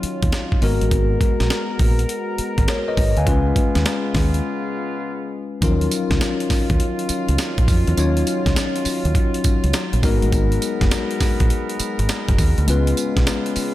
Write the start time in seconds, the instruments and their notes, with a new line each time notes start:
Already playing: brass ensemble D#3 F#3 C#4 F4, tine electric piano F#3 D#4 F4 C#5
0.03 muted fingered electric bass stroke, closed hi-hat
0.22 fingered electric bass D#2, kick, closed hi-hat
0.32 snare, closed hi-hat
0.52 kick
0.61 fingered electric bass G#1, tine electric piano G#3 B3 F#4 A#4, brass ensemble G#3 B3 F#4 A#4, open hi-hat
0.81 fingered electric bass A1, closed hi-hat
0.91 fingered electric bass G#1, kick, closed hi-hat
1.21 kick, closed hi-hat
1.40 fingered electric bass A#1, snare, closed hi-hat
1.50 snare, closed hi-hat
1.79 fingered electric bass A#1, kick, open hi-hat
1.99 closed hi-hat
2.09 closed hi-hat
2.38 muted fingered electric bass stroke, closed hi-hat
2.58 fingered electric bass G#1, kick, closed hi-hat
2.68 tine electric piano A#4 C#5, snare, closed hi-hat
2.88 tine electric piano B4 D#5
2.97 fingered electric bass G#1, kick, open hi-hat
3.17 fingered electric bass D2, tine electric piano F5 G#5, closed hi-hat
3.26 fingered electric bass C#2, brass ensemble C#3 B3 F4, tine electric piano G#3 C#4 F4 B4, kick, closed hi-hat
3.56 kick, closed hi-hat
3.75 fingered electric bass D#2, snare, closed hi-hat
3.86 snare, closed hi-hat
4.14 fingered electric bass D#2, kick, snare, open hi-hat
4.34 closed hi-hat
5.62 fingered electric bass D#2, brass ensemble D#3 F#3 C#4 F4, tine electric piano F3 C#4 D#4 F4 A#4, kick, closed hi-hat, tambourine
5.68 tine electric piano F#3
5.81 closed hi-hat
5.91 closed hi-hat, tambourine
6.11 fingered electric bass C#2, kick, snare, closed hi-hat
6.21 snare, closed hi-hat, tambourine
6.40 closed hi-hat
6.50 muted fingered electric bass stroke, kick, snare, open hi-hat, tambourine
6.70 fingered electric bass D#2, kick, closed hi-hat
6.80 closed hi-hat
6.99 closed hi-hat
7.09 muted fingered electric bass stroke, closed hi-hat, tambourine
7.29 fingered electric bass C#2, closed hi-hat
7.38 snare, closed hi-hat, tambourine
7.58 fingered electric bass A#1, kick, closed hi-hat
7.68 fingered electric bass F2, kick, open hi-hat, tambourine
7.87 fingered electric bass E2, closed hi-hat
7.97 fingered electric bass D#2, tine electric piano F#3 C#4 D#4 F4 C#5, closed hi-hat, tambourine
8.17 closed hi-hat
8.27 closed hi-hat, tambourine
8.46 fingered electric bass C#2, kick, snare, closed hi-hat
8.56 snare, closed hi-hat, tambourine
8.76 closed hi-hat
8.85 muted fingered electric bass stroke, open hi-hat, tambourine
9.05 fingered electric bass D#2, closed hi-hat
9.15 kick, closed hi-hat
9.34 closed hi-hat
9.44 muted fingered electric bass stroke, kick, closed hi-hat, tambourine
9.64 fingered electric bass C#2, closed hi-hat
9.73 snare, closed hi-hat, tambourine
9.93 fingered electric bass A#1, closed hi-hat
10.03 fingered electric bass G#1, tine electric piano G#3 B3 D#4 F#4 A#4, brass ensemble G#3 B3 A#4, kick, open hi-hat, tambourine
10.22 fingered electric bass A1, closed hi-hat
10.32 fingered electric bass G#1, kick, closed hi-hat, tambourine
10.52 closed hi-hat
10.62 closed hi-hat, tambourine
10.81 fingered electric bass F#1, kick, snare, closed hi-hat
10.91 snare, closed hi-hat, tambourine
11.11 closed hi-hat
11.20 muted fingered electric bass stroke, kick, snare, open hi-hat, tambourine
11.40 fingered electric bass A#1, kick, closed hi-hat
11.50 closed hi-hat
11.70 closed hi-hat
11.79 muted fingered electric bass stroke, closed hi-hat, tambourine
11.99 fingered electric bass G#1, closed hi-hat
12.09 snare, closed hi-hat, tambourine
12.28 fingered electric bass F#1, kick, closed hi-hat
12.38 fingered electric bass D#2, kick, open hi-hat, tambourine
12.58 fingered electric bass D2, closed hi-hat
12.68 fingered electric bass C#2, brass ensemble C#3 B3 F4, tine electric piano G#3 B3 C#4 F4 B4, closed hi-hat, tambourine
12.87 closed hi-hat
12.97 closed hi-hat, tambourine
13.17 fingered electric bass B1, kick, snare, closed hi-hat
13.27 snare, closed hi-hat, tambourine
13.46 closed hi-hat
13.56 muted fingered electric bass stroke, open hi-hat, tambourine